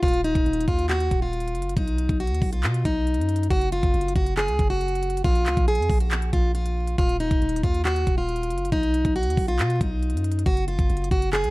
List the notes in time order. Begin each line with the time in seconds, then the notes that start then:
0.03 D#1 F4, kick, closed hi-hat
0.08 closed hi-hat
0.14 closed hi-hat
0.24 D#4, closed hi-hat
0.35 D#1, kick, closed hi-hat
0.46 D#1, closed hi-hat
0.53 closed hi-hat
0.61 closed hi-hat
0.68 D#2 F4, kick, closed hi-hat
0.79 closed hi-hat
0.90 F#4, clap, closed hi-hat
1.00 closed hi-hat
1.11 D#1, kick, closed hi-hat
1.22 F4
1.33 closed hi-hat
1.40 closed hi-hat
1.48 closed hi-hat
1.55 F#1, closed hi-hat
1.62 closed hi-hat
1.69 closed hi-hat
1.77 B1 D#4, kick, closed hi-hat
1.87 closed hi-hat
1.98 closed hi-hat
2.09 B1, kick, closed hi-hat
2.20 F#4, closed hi-hat
2.27 D#2, closed hi-hat
2.35 closed hi-hat
2.42 B1, kick, open hi-hat
2.53 F4, closed hi-hat
2.63 B2, clap, closed hi-hat
2.74 closed hi-hat
2.85 B1 D#4, kick, closed hi-hat
3.07 closed hi-hat
3.14 F#2, closed hi-hat
3.21 closed hi-hat
3.29 closed hi-hat
3.36 closed hi-hat
3.43 closed hi-hat
3.50 F#1 F#4, kick, closed hi-hat
3.61 closed hi-hat
3.72 F4, closed hi-hat
3.83 F#1, kick, closed hi-hat
3.94 F#1, closed hi-hat
4.01 closed hi-hat
4.08 closed hi-hat
4.16 F#1 F#4, kick, closed hi-hat
4.27 closed hi-hat
4.37 G#4, clap, closed hi-hat
4.48 C#2, closed hi-hat
4.59 F#1, kick, closed hi-hat
4.70 F#4
4.81 closed hi-hat
4.88 closed hi-hat
4.95 closed hi-hat
5.03 closed hi-hat
5.10 closed hi-hat
5.17 closed hi-hat
5.24 A#1 F4, kick, closed hi-hat
5.35 closed hi-hat
5.46 C#2, clap, closed hi-hat
5.57 A#1, kick, closed hi-hat
5.68 G#4, closed hi-hat
5.75 F2, closed hi-hat
5.82 closed hi-hat
5.90 A#1, kick, open hi-hat
6.00 F#4, closed hi-hat
6.11 clap, closed hi-hat
6.22 closed hi-hat
6.33 A#1 F4, kick, closed hi-hat
6.55 F4, closed hi-hat
6.66 closed hi-hat
6.87 closed hi-hat
6.98 D#1 F4, kick, closed hi-hat
7.09 closed hi-hat
7.20 D#4, closed hi-hat
7.31 D#1, kick, closed hi-hat
7.42 D#1, closed hi-hat
7.49 closed hi-hat
7.56 closed hi-hat
7.63 D#2 F4, kick, closed hi-hat
7.74 closed hi-hat
7.85 F#4, clap, closed hi-hat
7.96 closed hi-hat
8.07 D#1, kick, closed hi-hat
8.18 F4
8.29 closed hi-hat
8.36 closed hi-hat
8.43 closed hi-hat
8.50 F#1, closed hi-hat
8.58 closed hi-hat
8.65 closed hi-hat
8.72 B1 D#4, kick, closed hi-hat
8.83 closed hi-hat
8.94 closed hi-hat
9.05 B1, kick, closed hi-hat
9.16 F#4, closed hi-hat
9.23 D#2, closed hi-hat
9.30 closed hi-hat
9.37 B1, kick, open hi-hat
9.48 F4, closed hi-hat
9.59 B2, clap, closed hi-hat
9.70 closed hi-hat
9.81 B1 D#4, kick, closed hi-hat
10.03 closed hi-hat
10.10 F#2, closed hi-hat
10.17 closed hi-hat
10.24 closed hi-hat
10.32 closed hi-hat
10.39 closed hi-hat
10.46 F#1 F#4, kick, closed hi-hat
10.57 closed hi-hat
10.68 F4, closed hi-hat
10.79 F#1, kick, closed hi-hat
10.90 F#1, closed hi-hat
10.97 closed hi-hat
11.04 closed hi-hat
11.11 F#1 F#4, kick, closed hi-hat
11.22 closed hi-hat
11.33 G#4, clap, closed hi-hat
11.44 C#2, closed hi-hat